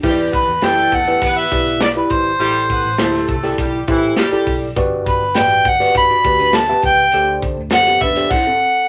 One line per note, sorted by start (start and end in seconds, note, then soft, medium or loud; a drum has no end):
0.03 0.28 E2 loud
0.03 0.88 E3 medium
0.03 0.27 G3 loud
0.03 0.50 E4 medium
0.03 0.27 G4 loud
0.03 0.50 G4 medium
0.03 0.50 B4 medium
0.03 0.10 C5 medium
0.03 kick loud
0.03 crash medium
0.10 0.53 D5 loud
0.32 0.56 B3 medium
0.32 0.56 B4 medium
0.32 0.66 B4 medium
0.32 kick medium
0.32 closed hi-hat medium
0.48 0.60 E2 medium
0.62 0.87 F#2 medium
0.62 1.19 A3 loud
0.62 0.98 E4 medium
0.62 0.97 G4 medium
0.62 1.19 A4 loud
0.62 0.98 B4 medium
0.62 0.98 D5 medium
0.62 0.96 G5 medium
0.62 snare medium
0.62 closed hi-hat medium
0.77 snare soft
0.91 1.16 E2 loud
0.91 1.40 F#5 loud
0.91 kick medium
0.91 closed hi-hat medium
1.07 1.42 E4 medium
1.07 1.42 G4 medium
1.07 1.42 B4 medium
1.07 1.42 D5 medium
1.07 closed hi-hat medium
1.22 1.46 E3 medium
1.22 1.78 B3 loud
1.22 1.78 B4 loud
1.22 kick medium
1.22 closed hi-hat loud
1.38 1.82 E5 medium
1.51 1.99 B1 medium
1.51 1.86 E4 medium
1.51 1.86 G4 medium
1.51 1.86 B4 medium
1.51 1.86 D5 medium
1.51 kick medium
1.51 closed hi-hat medium
1.66 closed hi-hat soft
1.81 1.89 D5 loud
1.81 snare loud
1.81 closed hi-hat medium
1.96 2.31 E4 medium
1.96 2.31 G4 medium
1.96 2.31 B4 medium
1.96 2.13 B4 medium
1.96 2.31 D5 medium
2.10 2.35 G#1 medium
2.10 3.29 C5 medium
2.10 kick medium
2.10 closed hi-hat medium
2.39 2.64 A1 loud
2.39 3.25 A2 medium
2.39 2.64 G3 loud
2.39 2.87 E4 medium
2.39 2.87 G4 medium
2.39 2.64 G4 loud
2.39 2.87 A4 medium
2.39 2.87 C5 medium
2.39 closed hi-hat medium
2.70 2.95 B3 medium
2.70 2.95 B4 medium
2.70 kick medium
2.70 closed hi-hat medium
2.84 2.97 A1 loud
2.98 3.23 D2 medium
2.98 3.56 A3 medium
2.98 3.34 E4 medium
2.98 3.34 G4 medium
2.98 3.34 A4 medium
2.98 3.56 A4 loud
2.98 3.34 C5 medium
2.98 snare loud
2.98 closed hi-hat medium
3.13 snare soft
3.28 3.53 C2 medium
3.28 kick medium
3.28 closed hi-hat medium
3.43 3.79 E4 medium
3.43 3.78 G4 medium
3.43 3.78 A4 medium
3.43 3.78 D5 loud
3.43 snare soft
3.58 3.82 B1 medium
3.58 3.83 G3 medium
3.58 3.83 G4 medium
3.58 kick medium
3.58 closed hi-hat loud
3.88 4.12 A1 medium
3.88 4.13 E3 loud
3.88 4.23 E4 medium
3.88 4.13 E4 loud
3.88 4.23 G4 medium
3.88 4.23 A4 medium
3.88 4.23 C5 loud
3.88 kick loud
3.88 closed hi-hat medium
4.02 closed hi-hat soft
4.17 4.60 G3 loud
4.17 4.60 G4 loud
4.17 snare loud
4.17 closed hi-hat medium
4.32 4.67 E4 medium
4.32 4.67 G4 medium
4.32 4.67 A4 medium
4.32 4.67 D5 loud
4.32 muted fingered electric bass stroke soft
4.46 4.71 B1 medium
4.46 kick medium
4.46 open hi-hat medium
4.76 5.00 G1 loud
4.76 5.61 G2 medium
4.76 5.23 F#4 medium
4.76 5.23 G4 medium
4.76 5.23 B4 medium
4.76 5.23 D5 loud
4.76 kick loud
4.76 closed hi-hat medium
5.06 5.39 B4 medium
5.06 kick medium
5.06 closed hi-hat medium
5.21 5.33 G1 loud
5.35 5.60 A1 loud
5.35 5.71 F#4 medium
5.35 5.71 G4 medium
5.35 5.71 B4 medium
5.35 5.71 D5 medium
5.35 5.70 G5 medium
5.35 snare medium
5.35 closed hi-hat medium
5.64 5.89 G1 loud
5.64 5.96 F#5 loud
5.64 kick medium
5.64 closed hi-hat medium
5.80 6.15 F#4 medium
5.80 6.15 G4 medium
5.80 6.15 B4 medium
5.80 6.15 D5 medium
5.80 snare soft
5.95 6.19 G2 medium
5.95 6.57 B5 loud
5.95 kick medium
5.95 closed hi-hat loud
6.10 6.38 F#4 medium
6.10 6.38 D5 medium
6.24 6.72 D2 medium
6.24 6.60 F#4 medium
6.24 6.60 G4 medium
6.24 6.60 B4 medium
6.24 6.60 D5 medium
6.24 kick medium
6.24 closed hi-hat medium
6.39 6.54 D4 medium
6.39 6.53 B4 medium
6.39 closed hi-hat medium
6.53 6.68 A4 medium
6.53 6.84 A5 loud
6.53 snare loud
6.53 closed hi-hat medium
6.69 7.12 B3 medium
6.69 7.04 G4 medium
6.69 7.11 G4 medium
6.69 7.04 B4 medium
6.69 7.04 E5 medium
6.69 7.04 F#5 medium
6.82 7.07 C#2 medium
6.82 7.40 G5 medium
6.82 kick medium
6.82 closed hi-hat medium
7.12 7.37 D2 loud
7.12 7.98 D3 medium
7.12 7.60 G4 medium
7.12 7.60 A4 medium
7.12 7.60 C5 medium
7.12 7.60 D5 medium
7.12 closed hi-hat medium
7.42 kick medium
7.42 closed hi-hat medium
7.57 7.69 D2 loud
7.70 7.96 F#2 medium
7.70 8.07 G4 medium
7.70 8.07 A4 medium
7.70 8.07 C5 medium
7.70 8.07 D5 medium
7.70 8.03 F#5 loud
7.70 snare loud
7.70 closed hi-hat medium
7.85 8.02 B3 medium
7.85 8.01 G4 medium
7.85 snare soft
8.00 8.25 E2 loud
8.00 8.30 B4 medium
8.00 8.33 E5 loud
8.00 kick medium
8.00 closed hi-hat medium
8.04 8.31 D4 medium
8.15 8.31 G4 medium
8.15 8.31 A4 medium
8.15 8.31 C5 medium
8.15 8.31 D5 medium
8.15 snare soft
8.15 closed hi-hat medium
8.30 8.46 E4 medium
8.30 8.46 C5 medium
8.30 8.88 F#5 medium
8.30 kick loud
8.30 crash medium
8.47 8.88 C4 medium
8.47 8.88 A4 medium